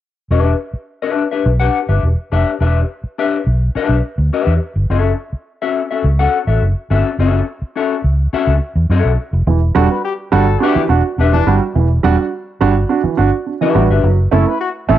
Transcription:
0.31 E1 D4 G4 B4 E5
0.73 muted fingered electric bass stroke
1.02 D4 G4 B4 E5
1.31 D4 G4 B4 E5
1.46 B1
1.60 D4 G4 B4 F#5
1.89 G1 D4 G4 B4 E5
2.03 E1
2.32 F1 D4 G4 B4 E5
2.60 E1 D4 G4 B4 E5
3.04 muted fingered electric bass stroke
3.18 D4 G4 B4 E5
3.47 B1
3.75 D4 G4 B4 E5, muted fingered electric bass stroke
3.89 B1
4.18 D2
4.33 D4 G4 B4 E5
4.47 E2
4.76 G1
4.90 F#1 C#4 F#4 A4 E5
5.33 muted fingered electric bass stroke
5.62 C#4 F#4 A4 E5
5.91 C#4 F#4 A4 E5
6.04 C#2
6.19 C#4 F#4 A4 F#5
6.47 A1 C#4 F#4 A4 E5
6.62 F#1
6.90 G1 C#4 F#4 A4 E5
7.19 F#1 C#4 F#4 A4 E5
7.62 muted fingered electric bass stroke
7.76 C#4 F#4 A4 E5
8.04 C#2
8.33 C#4 F#4 A4 E5, muted fingered electric bass stroke
8.47 C#2
8.76 E2
8.90 F#2 C#4 F#4 A4 E5
9.05 B1
9.33 F1
9.47 E1 E3
9.75 E1 G3 D4 F#4 A4
9.90 D4 F#4 B4
10.04 G4
10.32 G1 G3 D4 F#4 A4
10.60 D4 F#4 G4 B4 E5
10.75 E3, muted fingered electric bass stroke
10.89 E1 D4 F#4
11.18 E1 D4 F#4 G4 B4 E5
11.33 E3 D4
11.47 G1 G3 D4 F#4
11.75 E1 E3
12.03 E1 G3 D4 F#4
12.18 D4 F#4
12.61 G1 G3 D4 F#4
12.89 D4 F#4
13.03 E3, muted fingered electric bass stroke
13.17 G1 D4 F#4
13.46 D4 F#4
13.61 E3 D4 G4 B4 E5
13.75 A1 G3 D4 F#4
13.90 G1 D4 G4 B4 E5
14.03 F#1 F#3
14.31 F#1 A3 C#4 E4 A4
14.46 C#4 E4 B4
14.61 F#4
14.89 A1 A3 C#4 E4 A4

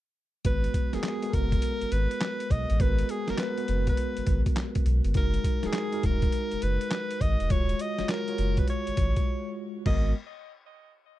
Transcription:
0.45 G#1 G#3 B3 F#4 B4, kick, closed hi-hat
0.64 closed hi-hat
0.74 kick, closed hi-hat
0.93 F#1 G#3 B3 F#4 G#4 A#4, snare, closed hi-hat
1.03 snare, clap, closed hi-hat
1.22 G#3 B3 F#4 A4, closed hi-hat
1.30 F#1 A#4, kick, closed hi-hat
1.34 A#4
1.52 kick, closed hi-hat
1.62 closed hi-hat
1.81 G#1, closed hi-hat
1.92 G#1 B4, closed hi-hat
2.11 closed hi-hat
2.21 snare, clap, closed hi-hat
2.40 closed hi-hat
2.50 B1 D#5, kick, closed hi-hat
2.70 A1, closed hi-hat
2.80 G#1 G#3 B3 F#4 A#4 B4, kick, closed hi-hat
2.98 closed hi-hat
3.09 G#4, closed hi-hat
3.28 F#1 G#3 B3 F#4 A#4, snare, closed hi-hat
3.38 B4, snare, clap, closed hi-hat
3.57 G#3 B3 F#4 B4, closed hi-hat
3.68 F#1, closed hi-hat
3.87 B4, kick, closed hi-hat
3.97 closed hi-hat
4.17 G#1, closed hi-hat
4.26 G#1, kick, closed hi-hat
4.46 kick, closed hi-hat
4.56 snare, clap, closed hi-hat
4.75 kick, closed hi-hat
4.86 B1, closed hi-hat
5.04 G1, closed hi-hat
5.14 F#1 G#3 D#4 F#4 A#4, kick, closed hi-hat
5.34 closed hi-hat
5.44 kick, closed hi-hat
5.63 D#1 G#3 D#4 F#4 G#4 A#4, snare, closed hi-hat
5.73 snare, clap, closed hi-hat
5.92 G#3 D#4 F#4 A#4, closed hi-hat
6.03 D#1 A#4, kick, closed hi-hat
6.22 kick, closed hi-hat
6.32 closed hi-hat
6.52 F#1, closed hi-hat
6.62 F#1 B4, closed hi-hat
6.81 closed hi-hat
6.91 snare, clap, closed hi-hat
7.11 closed hi-hat
7.21 G#1 D#5, kick, closed hi-hat
7.40 E1, closed hi-hat
7.50 D#1 G#3 F4 F#4 C#5, kick, closed hi-hat
7.69 closed hi-hat
7.79 D#5, closed hi-hat
7.98 F#1 G#3 F4 F#4 C#5, snare, closed hi-hat
8.09 A#4, snare, clap, closed hi-hat
8.28 G#3 F4 F#4 C#5, closed hi-hat
8.38 F#1, closed hi-hat
8.57 B4, kick, closed hi-hat
8.68 C#5, closed hi-hat
8.87 G#1, closed hi-hat
8.97 G#1, kick, closed hi-hat
9.16 kick, closed hi-hat
9.86 G#1 G#3 B3 F#4 A#4 D#5, kick, crash

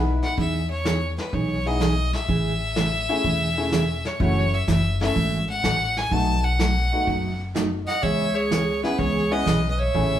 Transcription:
Already playing: B1 B3 D#4 E4 B4
0.23 F#5, snare
0.37 E2 E3 B3 D#4 G#4 E5, brush sweep, kick
0.70 C#5
0.84 E3 B3 D#4 G#4, snare, hi-hat pedal
1.18 B4, snare
1.33 B1 E3 B3 D#4 G#4 C#5, brush sweep, kick
1.65 B3 D#4 E4 G#4 D#5
1.80 E3 B3 D#4 G#4, snare, hi-hat pedal
2.13 E5, snare
2.28 A1 C#3 E3 A3 C#4 G#4, brush sweep, kick
2.76 C#3 E3 A3 C#4 G#4, snare, hi-hat pedal
3.09 A3 C#4 E4 G#4
3.24 E1 C#3 E3 A3 C#4 G#4, brush sweep, kick
3.57 A3 C#4 E4 G#4
3.71 C#3 E3 A3 C#4 G#4, snare, hi-hat pedal
4.05 C#5, snare
4.19 F#1 C#3 E3 A3 C#4 E4 F#4 C#5, brush sweep, kick
4.54 E5
4.67 F#1 C#3 E3 A3 C#4 F#4 E5, snare, hi-hat pedal
5.01 A3 C#4 E4 A4 E5, snare
5.15 G#1 C#3 E3 A3 C#4 F#4, brush sweep, kick
5.49 F#5
5.63 A1 C#3 E3 A3 C#4 F#4, snare, hi-hat pedal
5.97 G#5, snare
6.11 B1 B2 F#3 A3 B3 D#4 F#4 A5, brush sweep, kick
6.44 F#5
6.59 B2 F#3 A3 D#4 F#4, snare, hi-hat pedal
6.92 A3 B3 D#4 F#4
7.06 F#1 B2 F#3 A3 D#4 F#4, brush sweep, kick
7.54 B2 F#3 A3 D#4 F#4, snare, hi-hat pedal
7.87 D#5 F#5, snare
8.02 C#2 C#3 E3 B3 C#4 G#4 C#5 E5, brush sweep, kick
8.35 G#4 C#5
8.50 C#3 E3 B3 C#4 G#4, snare, hi-hat pedal
8.83 B3 C#4 E4 G#4 B4, snare
8.98 C#2 C#3 E3 B3 C#4 G#4 C#5, brush sweep, kick
9.31 B3 C#4 E4 G#4 B4 D#5
9.45 B1 C#3 E3 B3 C#4 G#4, snare, hi-hat pedal
9.69 B4 D#5
9.78 C#5 E5
9.94 A1 C#3 E3 A3 C#4 E4 G#4, brush sweep, kick

